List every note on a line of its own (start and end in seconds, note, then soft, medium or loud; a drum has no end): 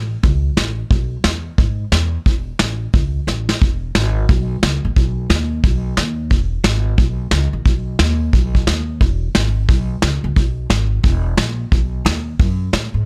0.00 0.14 A1 medium
0.23 0.48 C#2 loud
0.23 kick loud
0.23 open hi-hat medium
0.57 0.81 A1 medium
0.57 snare loud
0.57 open hi-hat medium
0.90 1.15 B1 medium
0.90 kick loud
0.90 open hi-hat medium
1.24 1.49 E2 medium
1.24 snare loud
1.24 open hi-hat medium
1.58 1.83 G#2 medium
1.58 kick loud
1.58 open hi-hat soft
1.92 2.16 E2 medium
1.92 snare loud
2.26 2.50 E1 medium
2.26 kick loud
2.26 open hi-hat soft
2.59 2.84 A1 medium
2.59 snare loud
2.93 3.18 C#2 medium
2.93 kick loud
2.93 open hi-hat medium
3.27 3.52 A1 medium
3.27 snare medium
3.49 snare medium
3.62 3.90 E1 medium
3.62 kick loud
3.62 open hi-hat soft
3.95 4.24 G#1 loud
3.95 snare loud
3.95 open hi-hat soft
4.29 4.58 B1 loud
4.29 kick loud
4.29 open hi-hat medium
4.63 4.81 C#2 medium
4.63 snare loud
4.85 4.95 A1 medium
4.96 5.25 B1 medium
4.96 kick loud
4.96 open hi-hat soft
5.30 5.59 D#2 loud
5.30 snare loud
5.30 open hi-hat medium
5.64 5.93 B1 loud
5.64 kick loud
5.64 open hi-hat soft
5.97 6.32 D#2 loud
5.97 snare medium
6.30 6.60 E1 medium
6.30 kick loud
6.30 open hi-hat soft
6.64 6.93 G#1 medium
6.64 snare loud
6.98 7.27 B1 medium
6.98 kick loud
6.98 open hi-hat medium
7.31 7.50 C#2 loud
7.31 snare medium
7.53 7.64 A1 medium
7.65 7.95 B1 medium
7.65 kick loud
7.65 open hi-hat soft
7.99 8.28 D#2 medium
7.99 snare loud
7.99 open hi-hat medium
8.33 8.62 B1 medium
8.33 kick loud
8.33 open hi-hat medium
8.55 kick medium
8.67 8.96 D#2 medium
8.67 snare loud
9.01 9.30 E1 medium
9.01 kick loud
9.01 open hi-hat medium
9.35 9.64 G#1 medium
9.35 snare loud
9.35 open hi-hat medium
9.68 9.97 B1 loud
9.68 kick loud
9.68 open hi-hat medium
10.02 10.21 C#2 medium
10.02 snare loud
10.24 10.34 C#2 medium
10.36 10.65 B1 medium
10.36 kick loud
10.36 open hi-hat medium
10.70 10.99 G#1 loud
10.70 snare loud
11.03 11.32 E1 loud
11.03 kick loud
11.03 open hi-hat medium
11.37 11.66 A#1 medium
11.37 snare loud
11.72 12.01 B1 medium
11.72 kick loud
11.72 open hi-hat medium
12.05 12.34 D#2 medium
12.05 snare loud
12.05 open hi-hat soft
12.39 12.68 F#2 loud
12.39 kick loud
12.39 open hi-hat medium
12.73 12.91 A2 loud
12.73 snare loud
12.73 open hi-hat medium
12.94 13.05 G#2 medium